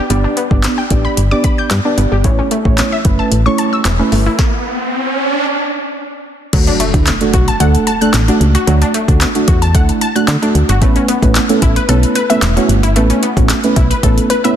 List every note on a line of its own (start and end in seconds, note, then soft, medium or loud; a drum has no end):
0.10 0.26 G1 medium
0.10 0.24 G3 medium
0.10 0.40 B3 medium
0.10 0.40 D4 medium
0.10 0.40 G4 medium
0.10 0.40 D5 loud
0.10 closed hi-hat medium
0.24 0.36 D4 medium
0.37 0.50 B3 medium
0.37 closed hi-hat medium
0.51 0.67 G1 loud
0.51 0.80 B3 medium
0.51 0.80 D4 medium
0.51 0.80 G4 medium
0.51 0.81 D5 medium
0.51 kick loud
0.63 snare loud
0.63 clap loud
0.63 closed hi-hat medium
0.78 0.90 G5 medium
0.90 1.07 A1 loud
0.90 1.20 B3 medium
0.90 1.20 D4 medium
0.90 1.20 G4 medium
0.90 1.20 D5 medium
0.90 kick loud
0.90 closed hi-hat medium
1.05 1.17 B5 medium
1.17 1.34 G1 loud
1.17 closed hi-hat medium
1.31 1.70 B3 medium
1.31 1.70 D4 medium
1.31 1.70 G4 medium
1.31 1.70 D5 medium
1.31 1.43 D6 loud
1.44 1.58 B5 medium
1.44 kick medium
1.44 closed hi-hat medium
1.58 1.70 G6 medium
1.71 1.80 G2 loud
1.71 1.84 G3 medium
1.71 snare medium
1.71 clap loud
1.71 closed hi-hat medium
1.85 2.14 B3 medium
1.85 2.14 D4 medium
1.85 1.97 D4 medium
1.85 2.14 G4 medium
1.85 2.15 D5 loud
1.98 2.06 G1 medium
1.98 2.11 B3 medium
1.98 closed hi-hat medium
2.12 2.26 G1 medium
2.12 2.24 G4 medium
2.24 2.41 A1 loud
2.24 2.38 E3 medium
2.24 2.54 A3 medium
2.24 2.54 C#4 medium
2.24 2.54 E4 medium
2.24 2.54 C#5 medium
2.24 kick loud
2.24 closed hi-hat medium
2.24 riser medium
2.39 2.51 C#4 medium
2.51 2.65 A3 medium
2.51 closed hi-hat medium
2.65 2.82 A1 loud
2.65 2.95 A3 medium
2.65 2.95 C#4 medium
2.65 2.95 E4 medium
2.65 2.95 C#5 medium
2.65 kick loud
2.78 snare loud
2.78 clap loud
2.78 closed hi-hat loud
2.92 3.04 E5 medium
3.05 3.21 F#1 loud
3.05 3.34 A3 medium
3.05 3.35 C#4 medium
3.05 3.35 E4 medium
3.05 3.35 B4 loud
3.05 kick loud
3.05 closed hi-hat medium
3.19 3.31 A5 medium
3.32 3.48 A1 loud
3.32 closed hi-hat medium
3.46 3.84 A3 medium
3.46 3.84 C#4 medium
3.46 3.85 E4 medium
3.46 3.85 C#5 loud
3.46 3.58 C#6 loud
3.58 3.72 A5 medium
3.58 closed hi-hat medium
3.73 3.85 E6 medium
3.85 4.01 E1 medium
3.85 3.99 E3 medium
3.85 snare medium
3.85 clap loud
3.85 closed hi-hat medium
3.99 4.29 A3 medium
3.99 4.11 C#4 medium
3.99 4.29 C#4 medium
3.99 4.29 E4 medium
3.99 4.29 B4 loud
4.12 4.28 G1 medium
4.12 4.25 A3 medium
4.12 open hi-hat medium
4.26 4.38 E4 medium
4.39 kick loud
4.39 snare medium
6.53 6.69 D2 loud
6.53 6.67 F#3 medium
6.53 6.83 A3 medium
6.53 6.83 D4 medium
6.53 6.83 F#4 loud
6.53 kick loud
6.53 closed hi-hat medium
6.53 crash loud
6.53 impact medium
6.67 6.79 D4 medium
6.67 closed hi-hat soft
6.80 6.93 A3 medium
6.80 closed hi-hat medium
6.94 7.10 D2 loud
6.94 7.13 A3 medium
6.94 7.13 D4 medium
6.94 7.14 E4 loud
6.94 kick loud
6.94 closed hi-hat medium
7.07 snare loud
7.07 clap loud
7.07 closed hi-hat loud
7.21 7.50 A3 medium
7.21 7.50 D4 medium
7.21 7.50 F#4 loud
7.21 closed hi-hat medium
7.33 7.50 B1 loud
7.33 7.47 F#4 loud
7.33 kick loud
7.33 closed hi-hat medium
7.48 7.60 A5 medium
7.48 closed hi-hat medium
7.60 7.76 D2 loud
7.60 7.90 A3 medium
7.60 7.90 D4 medium
7.60 7.90 A4 loud
7.60 7.74 F#5 medium
7.60 closed hi-hat medium
7.75 closed hi-hat medium
7.87 8.00 A5 medium
7.87 closed hi-hat medium
8.01 8.20 A3 medium
8.01 8.21 D4 medium
8.01 8.21 A4 loud
8.01 8.13 F#6 medium
8.01 closed hi-hat medium
8.14 8.30 A1 loud
8.14 snare medium
8.14 clap loud
8.14 closed hi-hat medium
8.28 8.57 A3 medium
8.28 8.40 D4 medium
8.28 8.57 D4 medium
8.28 8.58 F#4 loud
8.28 closed hi-hat medium
8.41 8.57 C#2 medium
8.41 closed hi-hat medium
8.55 8.67 F#4 loud
8.55 closed hi-hat medium
8.67 8.84 D2 loud
8.67 8.81 F#3 medium
8.67 8.97 A3 medium
8.67 8.97 D4 medium
8.67 8.97 F#4 loud
8.67 closed hi-hat medium
8.82 8.94 D4 medium
8.82 closed hi-hat medium
8.94 9.08 A3 medium
8.94 closed hi-hat medium
9.08 9.25 D2 loud
9.08 9.28 A3 medium
9.08 9.28 D4 medium
9.08 9.28 F#4 loud
9.08 kick loud
9.08 closed hi-hat medium
9.21 snare loud
9.21 clap loud
9.21 closed hi-hat loud
9.35 9.64 A3 medium
9.35 9.64 D4 medium
9.35 9.65 F#4 loud
9.35 closed hi-hat medium
9.48 9.76 E2 loud
9.48 9.61 F#4 loud
9.48 kick loud
9.48 closed hi-hat medium
9.62 9.74 A5 medium
9.62 closed hi-hat medium
9.74 9.91 D2 loud
9.74 10.04 A3 medium
9.74 10.04 D4 medium
9.74 10.04 E4 loud
9.74 9.88 F#5 medium
9.74 kick loud
9.74 closed hi-hat medium
9.89 closed hi-hat medium
10.01 10.15 A5 medium
10.01 closed hi-hat medium
10.15 10.35 A3 medium
10.15 10.35 D4 medium
10.15 10.35 F#4 loud
10.15 10.27 F#6 medium
10.15 closed hi-hat medium
10.28 10.37 D3 loud
10.28 snare medium
10.28 clap loud
10.28 closed hi-hat medium
10.42 10.71 A3 medium
10.42 10.72 D4 medium
10.42 10.54 D4 medium
10.42 10.72 F#4 loud
10.42 closed hi-hat medium
10.55 10.64 D2 medium
10.55 closed hi-hat medium
10.69 10.83 G1 medium
10.69 10.81 F#4 medium
10.69 closed hi-hat medium
10.81 10.98 A1 loud
10.81 11.11 A3 medium
10.81 10.95 A3 medium
10.81 11.11 B3 medium
10.81 11.11 C#4 medium
10.81 11.11 E4 medium
10.81 11.11 B4 loud
10.81 kick loud
10.81 closed hi-hat medium
10.96 11.08 C#4 medium
10.96 closed hi-hat medium
11.08 11.22 B3 medium
11.08 closed hi-hat medium
11.22 11.39 A1 loud
11.22 11.42 A3 medium
11.22 11.42 B3 medium
11.22 11.42 C#4 medium
11.22 11.42 E4 medium
11.22 11.42 B4 loud
11.22 kick loud
11.22 closed hi-hat medium
11.35 snare loud
11.35 clap loud
11.35 closed hi-hat loud
11.49 11.78 A3 medium
11.49 11.79 B3 medium
11.49 11.79 C#4 medium
11.49 11.79 E4 medium
11.49 11.79 A4 loud
11.49 closed hi-hat medium
11.62 11.78 A1 medium
11.62 11.76 E4 loud
11.62 kick loud
11.62 closed hi-hat medium
11.76 11.88 B4 medium
11.76 closed hi-hat medium
11.89 12.05 B1 loud
11.89 12.18 A3 medium
11.89 12.18 B3 medium
11.89 12.18 C#4 medium
11.89 12.18 E4 medium
11.89 12.02 A4 medium
11.89 12.19 B4 loud
11.89 closed hi-hat medium
12.03 closed hi-hat medium
12.15 12.29 B4 medium
12.15 closed hi-hat medium
12.30 12.49 A3 medium
12.30 12.49 B3 medium
12.30 12.49 C#4 medium
12.30 12.49 E4 medium
12.30 12.49 B4 medium
12.30 12.42 E5 medium
12.30 closed hi-hat medium
12.42 12.58 E1 loud
12.42 snare medium
12.42 clap loud
12.42 closed hi-hat loud
12.56 12.86 A3 medium
12.56 12.86 B3 medium
12.56 12.68 C#4 medium
12.56 12.86 C#4 medium
12.56 12.86 E4 medium
12.56 12.86 F#4 loud
12.56 closed hi-hat medium
12.69 12.97 G1 loud
12.69 closed hi-hat medium
12.83 12.95 E4 loud
12.83 closed hi-hat medium
12.96 13.12 A1 loud
12.96 13.09 A3 medium
12.96 13.26 A3 medium
12.96 13.26 B3 medium
12.96 13.26 C#4 medium
12.96 13.26 E4 medium
12.96 13.26 B4 loud
12.96 closed hi-hat medium
13.10 13.22 C#4 medium
13.10 closed hi-hat medium
13.23 13.36 B3 medium
13.23 closed hi-hat medium
13.37 13.53 A1 loud
13.37 13.56 A3 medium
13.37 13.56 B3 medium
13.37 13.56 C#4 medium
13.37 13.56 E4 medium
13.37 13.56 F#4 loud
13.37 kick loud
13.37 closed hi-hat medium
13.49 snare loud
13.49 clap loud
13.49 closed hi-hat loud
13.64 13.93 A3 medium
13.64 13.93 B3 medium
13.64 13.93 C#4 medium
13.64 13.93 E4 medium
13.64 13.93 B4 loud
13.64 closed hi-hat medium
13.76 13.93 B1 loud
13.76 13.90 E4 loud
13.76 kick loud
13.76 closed hi-hat medium
13.90 14.02 B4 medium
13.90 closed hi-hat medium
14.03 14.19 A1 loud
14.03 14.33 A3 medium
14.03 14.33 B3 medium
14.03 14.33 C#4 medium
14.03 14.33 E4 medium
14.03 14.17 A4 medium
14.03 14.33 B4 loud
14.03 kick loud
14.03 closed hi-hat loud
14.18 closed hi-hat medium
14.30 14.43 B4 medium
14.30 closed hi-hat medium
14.44 14.56 A3 medium
14.44 14.56 B3 medium
14.44 14.56 C#4 medium
14.44 14.56 E4 medium
14.44 14.56 B4 loud
14.44 14.56 E5 medium
14.44 closed hi-hat medium